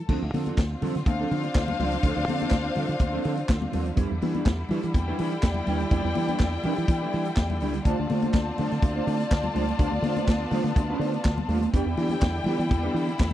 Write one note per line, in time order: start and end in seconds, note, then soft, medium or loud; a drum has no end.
0.08 0.18 D2 loud
0.08 11.70 D3 medium
0.08 0.25 F3 medium
0.08 3.93 C4 medium
0.08 0.22 C4 medium
0.08 0.21 D4 loud
0.08 3.93 F4 medium
0.08 0.20 A4 medium
0.08 kick loud
0.08 crash loud
0.08 muted conga soft
0.21 0.30 D2 loud
0.21 muted clean electric guitar stroke medium
0.33 0.50 D3 loud
0.33 0.46 F3 medium
0.33 0.46 C4 medium
0.33 0.45 D4 medium
0.33 0.44 A4 medium
0.33 open hi-hat medium
0.33 muted conga soft
0.33 high conga medium
0.45 0.59 F3 medium
0.45 0.58 C4 medium
0.45 0.58 D4 medium
0.45 0.57 A4 medium
0.45 closed hi-hat medium
0.45 high conga medium
0.58 0.74 D2 loud
0.58 kick loud
0.58 snare loud
0.58 clap medium
0.58 closed hi-hat medium
0.70 muted clean electric guitar stroke soft
0.81 0.91 D3 loud
0.81 0.98 F3 medium
0.81 0.96 C4 medium
0.81 0.95 D4 medium
0.81 0.95 A4 loud
0.81 open hi-hat medium
0.81 muted conga soft
0.81 low conga medium
0.95 1.03 D3 loud
0.95 muted clean electric guitar stroke soft
0.95 snare soft
0.95 closed hi-hat medium
1.06 1.23 D2 loud
1.06 3.93 D4 loud
1.06 3.93 C5 loud
1.06 3.94 F5 loud
1.06 muted clean electric guitar stroke soft
1.06 kick loud
1.06 closed hi-hat medium
1.06 muted conga soft
1.06 high conga medium
1.21 1.30 F3 medium
1.21 1.30 C4 medium
1.21 1.31 D4 medium
1.21 1.31 A4 medium
1.31 1.48 D3 loud
1.31 1.44 F3 medium
1.31 1.44 C4 medium
1.31 1.44 D4 medium
1.31 1.43 A4 medium
1.31 open hi-hat medium
1.31 muted conga soft
1.43 muted clean electric guitar stroke medium
1.43 closed hi-hat medium
1.55 1.72 D2 loud
1.55 kick loud
1.55 snare loud
1.55 clap medium
1.55 closed hi-hat medium
1.55 muted conga soft
1.68 muted clean electric guitar stroke soft
1.68 high conga medium
1.68 low conga medium
1.79 1.96 C#2 medium
1.79 1.96 F3 loud
1.79 1.93 C4 loud
1.79 1.92 D4 loud
1.79 1.92 A4 loud
1.79 open hi-hat medium
1.79 muted conga soft
1.79 low conga medium
1.92 muted clean electric guitar stroke soft
1.92 closed hi-hat medium
2.03 2.12 D2 loud
2.03 2.20 F3 medium
2.03 2.17 C4 medium
2.03 2.17 D4 medium
2.03 2.16 A4 medium
2.03 kick loud
2.03 closed hi-hat medium
2.03 muted conga soft
2.17 2.24 D2 medium
2.17 muted clean electric guitar stroke soft
2.27 2.44 D3 loud
2.27 2.41 F3 medium
2.27 2.40 C4 medium
2.27 2.40 D4 medium
2.27 2.39 A4 medium
2.27 open hi-hat medium
2.27 muted conga soft
2.27 high conga medium
2.40 2.53 F3 medium
2.40 2.53 C4 medium
2.40 2.52 D4 medium
2.40 2.52 A4 medium
2.40 closed hi-hat soft
2.40 high conga medium
2.50 2.68 D2 loud
2.50 kick loud
2.50 snare loud
2.50 clap medium
2.50 closed hi-hat medium
2.65 muted clean electric guitar stroke medium
2.75 2.85 D3 medium
2.75 2.92 F3 medium
2.75 2.88 C4 medium
2.75 2.89 D4 medium
2.75 2.87 A4 loud
2.75 open hi-hat medium
2.75 muted conga soft
2.75 low conga medium
2.88 2.97 D3 loud
2.88 muted clean electric guitar stroke soft
2.88 closed hi-hat soft
2.99 3.17 D2 loud
2.99 muted clean electric guitar stroke soft
2.99 kick loud
2.99 closed hi-hat medium
2.99 muted conga soft
2.99 high conga medium
3.13 3.23 F3 medium
3.13 3.24 C4 medium
3.13 3.24 D4 medium
3.13 3.24 A4 medium
3.24 3.41 D3 loud
3.24 3.38 F3 medium
3.24 3.38 C4 medium
3.24 3.37 D4 medium
3.24 3.37 A4 medium
3.24 open hi-hat medium
3.24 muted conga soft
3.37 muted clean electric guitar stroke medium
3.37 closed hi-hat soft
3.48 3.66 D2 medium
3.48 kick loud
3.48 snare loud
3.48 clap loud
3.48 closed hi-hat medium
3.48 muted conga soft
3.62 muted clean electric guitar stroke medium
3.62 high conga medium
3.62 low conga medium
3.71 3.90 D#2 medium
3.71 3.89 F3 medium
3.71 3.86 C4 medium
3.71 3.86 D4 medium
3.71 3.85 A4 medium
3.71 open hi-hat medium
3.71 muted conga soft
3.71 low conga loud
3.86 muted clean electric guitar stroke soft
3.86 closed hi-hat medium
3.95 4.06 E2 loud
3.95 4.13 G3 medium
3.95 7.82 G3 medium
3.95 4.11 D4 medium
3.95 4.10 E4 medium
3.95 7.82 E4 medium
3.95 4.09 B4 medium
3.95 kick loud
3.95 closed hi-hat medium
4.11 4.19 E2 medium
4.11 muted clean electric guitar stroke soft
4.21 4.39 E3 loud
4.21 4.35 G3 medium
4.21 4.35 D4 medium
4.21 4.34 E4 medium
4.21 4.34 B4 medium
4.21 open hi-hat medium
4.21 high conga medium
4.34 4.47 G3 medium
4.34 4.47 D4 medium
4.34 4.47 E4 medium
4.34 4.46 B4 medium
4.34 closed hi-hat medium
4.34 high conga medium
4.46 4.62 E2 loud
4.46 kick loud
4.46 snare loud
4.46 clap medium
4.46 closed hi-hat medium
4.46 muted conga soft
4.59 muted clean electric guitar stroke soft
4.69 4.79 E3 loud
4.69 4.87 G3 medium
4.69 4.83 D4 medium
4.69 4.82 E4 loud
4.69 4.82 B4 loud
4.69 open hi-hat medium
4.69 low conga medium
4.83 4.91 E3 medium
4.83 muted clean electric guitar stroke soft
4.83 closed hi-hat medium
4.94 5.11 E2 loud
4.94 7.82 E4 medium
4.94 7.82 D5 medium
4.94 7.82 G5 loud
4.94 muted clean electric guitar stroke soft
4.94 kick loud
4.94 closed hi-hat medium
4.94 muted conga soft
4.94 high conga medium
5.08 5.17 G3 medium
5.08 5.18 D4 medium
5.08 5.19 E4 medium
5.08 5.19 B4 medium
5.19 5.36 E3 loud
5.19 5.32 G3 medium
5.19 5.32 D4 medium
5.19 5.31 E4 medium
5.19 5.31 B4 medium
5.19 open hi-hat medium
5.19 muted conga soft
5.32 muted clean electric guitar stroke medium
5.32 closed hi-hat soft
5.43 5.60 E2 medium
5.43 kick loud
5.43 snare loud
5.43 clap loud
5.43 closed hi-hat medium
5.43 muted conga soft
5.54 muted clean electric guitar stroke soft
5.54 high conga medium
5.54 low conga medium
5.67 5.84 D#2 medium
5.67 5.84 G3 medium
5.67 5.81 D4 medium
5.67 5.80 E4 medium
5.67 5.80 B4 loud
5.67 open hi-hat medium
5.67 muted conga soft
5.67 low conga medium
5.80 muted clean electric guitar stroke soft
5.80 closed hi-hat medium
5.91 6.00 E2 loud
5.91 6.08 G3 medium
5.91 6.04 D4 loud
5.91 6.03 E4 loud
5.91 6.02 B4 medium
5.91 kick loud
5.91 closed hi-hat medium
6.03 6.12 E2 loud
6.03 muted clean electric guitar stroke medium
6.15 6.33 E3 loud
6.15 6.29 G3 medium
6.15 6.28 D4 medium
6.15 6.28 E4 medium
6.15 6.27 B4 medium
6.15 open hi-hat medium
6.15 muted conga soft
6.15 high conga medium
6.28 6.41 G3 medium
6.28 6.41 D4 medium
6.28 6.41 E4 medium
6.28 6.40 B4 medium
6.28 closed hi-hat soft
6.28 high conga medium
6.39 6.56 E2 loud
6.39 kick loud
6.39 snare loud
6.39 clap medium
6.39 closed hi-hat medium
6.54 muted clean electric guitar stroke medium
6.64 6.74 E3 loud
6.64 6.84 G3 medium
6.64 6.78 D4 medium
6.64 6.78 E4 loud
6.64 6.77 B4 medium
6.64 open hi-hat medium
6.64 muted conga soft
6.64 low conga medium
6.76 6.85 E3 loud
6.76 muted clean electric guitar stroke soft
6.76 closed hi-hat soft
6.88 7.05 E3 loud
6.88 muted clean electric guitar stroke soft
6.88 kick loud
6.88 closed hi-hat medium
6.88 high conga medium
7.02 7.13 G3 medium
7.02 7.14 D4 medium
7.02 7.15 E4 medium
7.02 7.15 B4 medium
7.13 7.30 E3 loud
7.13 7.26 G3 medium
7.13 7.26 D4 medium
7.13 7.26 E4 medium
7.13 7.25 B4 medium
7.13 open hi-hat medium
7.25 muted clean electric guitar stroke medium
7.25 closed hi-hat soft
7.36 7.62 E2 loud
7.36 kick loud
7.36 snare loud
7.36 clap medium
7.36 closed hi-hat medium
7.36 muted conga soft
7.50 muted clean electric guitar stroke soft
7.50 high conga medium
7.50 low conga medium
7.60 7.79 C#2 medium
7.60 7.78 G3 medium
7.60 7.74 D4 medium
7.60 7.74 E4 medium
7.60 7.74 B4 medium
7.60 open hi-hat medium
7.60 low conga medium
7.73 muted clean electric guitar stroke soft
7.73 closed hi-hat medium
7.85 7.94 D2 loud
7.85 8.02 A3 medium
7.85 9.78 C4 medium
7.85 7.99 D4 medium
7.85 11.70 F4 medium
7.85 7.99 F4 loud
7.85 7.98 C5 loud
7.85 11.70 D5 medium
7.85 11.70 A5 medium
7.85 kick loud
7.85 closed hi-hat medium
7.99 8.07 D2 loud
7.99 muted clean electric guitar stroke medium
8.10 8.27 D3 loud
8.10 8.23 A3 medium
8.10 8.23 D4 medium
8.10 8.22 F4 medium
8.10 8.22 C5 medium
8.10 open hi-hat medium
8.10 muted conga soft
8.10 high conga medium
8.22 8.36 A3 medium
8.22 8.35 D4 medium
8.22 8.35 F4 medium
8.22 8.34 C5 medium
8.22 closed hi-hat soft
8.22 high conga medium
8.33 8.50 D2 loud
8.33 kick loud
8.33 snare loud
8.33 clap medium
8.33 closed hi-hat medium
8.47 muted clean electric guitar stroke soft
8.58 8.67 D3 loud
8.58 8.75 A3 medium
8.58 8.72 D4 medium
8.58 8.72 F4 medium
8.58 8.70 C5 loud
8.58 open hi-hat medium
8.58 muted conga soft
8.58 low conga medium
8.71 8.79 D3 medium
8.71 muted clean electric guitar stroke soft
8.71 snare soft
8.71 closed hi-hat medium
8.82 8.99 D2 loud
8.82 muted clean electric guitar stroke soft
8.82 kick loud
8.82 closed hi-hat medium
8.82 muted conga soft
8.82 high conga medium
8.96 9.05 A3 medium
8.96 9.06 D4 medium
8.96 9.06 F4 medium
8.96 9.07 C5 medium
9.07 9.23 D3 loud
9.07 9.20 A3 medium
9.07 9.19 D4 medium
9.07 9.19 F4 medium
9.07 9.17 C5 medium
9.07 open hi-hat medium
9.07 muted conga soft
9.18 muted clean electric guitar stroke medium
9.18 closed hi-hat soft
9.31 9.48 D2 loud
9.31 kick loud
9.31 snare loud
9.31 clap medium
9.31 closed hi-hat medium
9.31 muted conga soft
9.44 muted clean electric guitar stroke soft
9.44 high conga medium
9.44 low conga medium
9.54 9.72 C#2 medium
9.54 9.71 A3 medium
9.54 9.66 D4 loud
9.54 9.66 F4 loud
9.54 9.65 C5 medium
9.54 open hi-hat medium
9.54 low conga medium
9.66 muted clean electric guitar stroke soft
9.66 closed hi-hat medium
9.78 9.88 D2 loud
9.78 9.95 A3 medium
9.78 11.71 B3 medium
9.78 9.92 D4 loud
9.78 9.92 F4 medium
9.78 9.91 C5 medium
9.78 kick loud
9.78 closed hi-hat medium
9.92 10.00 D2 medium
9.92 muted clean electric guitar stroke medium
10.02 10.19 D3 loud
10.02 10.17 A3 medium
10.02 10.17 D4 medium
10.02 10.16 F4 medium
10.02 10.15 C5 medium
10.02 open hi-hat medium
10.02 muted conga soft
10.02 high conga medium
10.16 10.29 A3 medium
10.16 10.29 D4 medium
10.16 10.29 F4 medium
10.16 10.28 C5 medium
10.16 closed hi-hat medium
10.16 high conga medium
10.26 10.44 D2 loud
10.26 kick loud
10.26 snare loud
10.26 clap medium
10.26 closed hi-hat medium
10.26 muted conga soft
10.40 muted clean electric guitar stroke soft
10.51 10.60 D3 loud
10.51 10.68 A3 medium
10.51 10.64 D4 medium
10.51 10.64 F4 medium
10.51 10.64 C5 loud
10.51 open hi-hat medium
10.51 low conga medium
10.64 10.72 D3 loud
10.64 muted clean electric guitar stroke soft
10.64 snare soft
10.64 closed hi-hat medium
10.76 10.93 D2 loud
10.76 muted clean electric guitar stroke soft
10.76 kick loud
10.76 closed hi-hat medium
10.76 muted conga soft
10.76 high conga medium
10.90 11.01 A3 medium
10.90 11.02 D4 medium
10.90 11.01 F4 medium
10.90 11.03 C5 loud
10.99 11.16 D3 loud
10.99 11.14 A3 medium
10.99 11.15 D4 medium
10.99 11.14 F4 medium
10.99 open hi-hat medium
10.99 muted conga soft
11.04 11.13 C5 medium
11.14 muted clean electric guitar stroke medium
11.14 closed hi-hat soft
11.25 11.42 D2 medium
11.25 kick loud
11.25 snare loud
11.25 clap medium
11.25 closed hi-hat medium
11.38 muted clean electric guitar stroke soft
11.38 high conga medium
11.38 low conga medium
11.48 11.65 D#2 loud
11.48 11.66 A3 medium
11.48 11.63 D4 medium
11.48 11.62 F4 medium
11.48 11.62 C5 loud
11.48 open hi-hat medium
11.48 low conga medium
11.62 muted clean electric guitar stroke soft
11.62 closed hi-hat medium
11.73 11.82 E2 loud
11.73 13.33 D3 medium
11.73 13.33 G3 medium
11.73 11.90 B3 medium
11.73 11.88 D4 medium
11.73 13.33 E4 medium
11.73 11.87 G4 loud
11.73 11.86 B4 loud
11.73 13.33 D5 medium
11.73 13.33 G5 loud
11.73 kick loud
11.73 closed hi-hat medium
11.86 11.94 E2 medium
11.86 muted clean electric guitar stroke soft
11.97 12.14 E3 loud
11.97 12.11 B3 medium
11.97 12.11 D4 medium
11.97 12.10 G4 medium
11.97 12.09 B4 medium
11.97 open hi-hat medium
11.97 muted conga soft
11.97 high conga medium
12.09 12.23 B3 soft
12.09 12.23 D4 medium
12.09 12.23 G4 medium
12.09 12.22 B4 medium
12.09 closed hi-hat medium
12.09 high conga medium
12.20 12.39 E2 loud
12.20 kick loud
12.20 snare loud
12.20 clap medium
12.20 closed hi-hat medium
12.20 muted conga soft
12.36 muted clean electric guitar stroke soft
12.44 12.55 E3 loud
12.44 12.63 B3 medium
12.44 12.60 D4 medium
12.44 12.59 G4 loud
12.44 12.58 B4 loud
12.44 open hi-hat medium
12.44 muted conga soft
12.44 low conga medium
12.59 12.67 E3 loud
12.59 muted clean electric guitar stroke soft
12.59 closed hi-hat medium
12.69 12.87 E2 loud
12.69 muted clean electric guitar stroke soft
12.69 kick loud
12.69 closed hi-hat medium
12.69 muted conga soft
12.69 high conga medium
12.83 12.93 B3 medium
12.83 12.94 D4 medium
12.83 12.94 G4 medium
12.83 12.95 B4 medium
12.94 13.11 E3 loud
12.94 13.08 B3 medium
12.94 13.08 D4 medium
12.94 13.08 G4 medium
12.94 13.07 B4 medium
12.94 open hi-hat medium
13.09 muted clean electric guitar stroke medium
13.09 closed hi-hat soft
13.18 13.33 E2 medium
13.18 muted clean electric guitar stroke soft
13.18 kick loud
13.18 snare loud
13.18 clap loud
13.18 closed hi-hat medium
13.18 muted conga soft